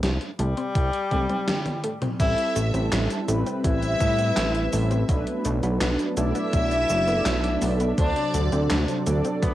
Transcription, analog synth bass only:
0, 0, Header, 1, 2, 480
1, 0, Start_track
1, 0, Tempo, 722892
1, 1459, Time_signature, 4, 2, 24, 8
1, 6335, End_track
2, 0, Start_track
2, 0, Title_t, "Analog synth bass"
2, 0, Program_c, 0, 38
2, 19, Note_on_c, 0, 36, 97
2, 123, Note_off_c, 0, 36, 0
2, 259, Note_on_c, 0, 36, 85
2, 363, Note_off_c, 0, 36, 0
2, 499, Note_on_c, 0, 36, 101
2, 603, Note_off_c, 0, 36, 0
2, 739, Note_on_c, 0, 36, 83
2, 843, Note_off_c, 0, 36, 0
2, 1460, Note_on_c, 0, 33, 93
2, 1564, Note_off_c, 0, 33, 0
2, 1700, Note_on_c, 0, 33, 96
2, 1804, Note_off_c, 0, 33, 0
2, 1820, Note_on_c, 0, 33, 86
2, 1924, Note_off_c, 0, 33, 0
2, 1941, Note_on_c, 0, 33, 102
2, 2044, Note_off_c, 0, 33, 0
2, 2179, Note_on_c, 0, 33, 89
2, 2283, Note_off_c, 0, 33, 0
2, 2420, Note_on_c, 0, 33, 83
2, 2628, Note_off_c, 0, 33, 0
2, 2659, Note_on_c, 0, 45, 81
2, 2868, Note_off_c, 0, 45, 0
2, 2901, Note_on_c, 0, 33, 78
2, 3108, Note_off_c, 0, 33, 0
2, 3142, Note_on_c, 0, 33, 103
2, 3349, Note_off_c, 0, 33, 0
2, 3378, Note_on_c, 0, 35, 96
2, 3483, Note_off_c, 0, 35, 0
2, 3620, Note_on_c, 0, 35, 93
2, 3724, Note_off_c, 0, 35, 0
2, 3740, Note_on_c, 0, 35, 84
2, 3844, Note_off_c, 0, 35, 0
2, 3859, Note_on_c, 0, 35, 100
2, 3963, Note_off_c, 0, 35, 0
2, 4098, Note_on_c, 0, 35, 84
2, 4203, Note_off_c, 0, 35, 0
2, 4339, Note_on_c, 0, 35, 87
2, 4548, Note_off_c, 0, 35, 0
2, 4579, Note_on_c, 0, 30, 82
2, 4788, Note_off_c, 0, 30, 0
2, 4817, Note_on_c, 0, 35, 78
2, 5027, Note_off_c, 0, 35, 0
2, 5059, Note_on_c, 0, 35, 100
2, 5268, Note_off_c, 0, 35, 0
2, 5299, Note_on_c, 0, 38, 101
2, 5403, Note_off_c, 0, 38, 0
2, 5539, Note_on_c, 0, 38, 100
2, 5644, Note_off_c, 0, 38, 0
2, 5660, Note_on_c, 0, 38, 86
2, 5764, Note_off_c, 0, 38, 0
2, 5782, Note_on_c, 0, 38, 105
2, 5885, Note_off_c, 0, 38, 0
2, 6021, Note_on_c, 0, 38, 88
2, 6124, Note_off_c, 0, 38, 0
2, 6258, Note_on_c, 0, 38, 85
2, 6335, Note_off_c, 0, 38, 0
2, 6335, End_track
0, 0, End_of_file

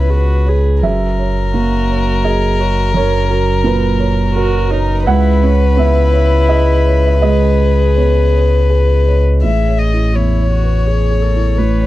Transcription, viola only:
0, 0, Header, 1, 2, 480
1, 0, Start_track
1, 0, Key_signature, 4, "minor"
1, 0, Tempo, 710059
1, 562, Time_signature, 3, 2, 24, 8
1, 3907, Tempo, 731707
1, 6307, Tempo, 710900
1, 7946, End_track
2, 0, Start_track
2, 0, Title_t, "Viola"
2, 0, Program_c, 0, 41
2, 0, Note_on_c, 0, 64, 40
2, 68, Note_on_c, 0, 66, 53
2, 78, Note_off_c, 0, 64, 0
2, 327, Note_on_c, 0, 68, 46
2, 337, Note_off_c, 0, 66, 0
2, 567, Note_off_c, 0, 68, 0
2, 1049, Note_on_c, 0, 66, 56
2, 1519, Note_on_c, 0, 68, 58
2, 1529, Note_off_c, 0, 66, 0
2, 1761, Note_on_c, 0, 66, 50
2, 1771, Note_off_c, 0, 68, 0
2, 1990, Note_off_c, 0, 66, 0
2, 1994, Note_on_c, 0, 70, 67
2, 2221, Note_off_c, 0, 70, 0
2, 2226, Note_on_c, 0, 70, 56
2, 2924, Note_off_c, 0, 70, 0
2, 2939, Note_on_c, 0, 66, 75
2, 3181, Note_on_c, 0, 63, 63
2, 3191, Note_off_c, 0, 66, 0
2, 3422, Note_on_c, 0, 64, 61
2, 3432, Note_off_c, 0, 63, 0
2, 3671, Note_on_c, 0, 61, 54
2, 3681, Note_off_c, 0, 64, 0
2, 3908, Note_on_c, 0, 64, 76
2, 3918, Note_off_c, 0, 61, 0
2, 4861, Note_off_c, 0, 64, 0
2, 4864, Note_on_c, 0, 68, 64
2, 6047, Note_off_c, 0, 68, 0
2, 6304, Note_on_c, 0, 68, 33
2, 6789, Note_on_c, 0, 64, 38
2, 6799, Note_off_c, 0, 68, 0
2, 7026, Note_off_c, 0, 64, 0
2, 7030, Note_on_c, 0, 66, 35
2, 7268, Note_on_c, 0, 68, 40
2, 7278, Note_off_c, 0, 66, 0
2, 7510, Note_on_c, 0, 69, 39
2, 7520, Note_off_c, 0, 68, 0
2, 7752, Note_on_c, 0, 71, 40
2, 7763, Note_off_c, 0, 69, 0
2, 7946, Note_off_c, 0, 71, 0
2, 7946, End_track
0, 0, End_of_file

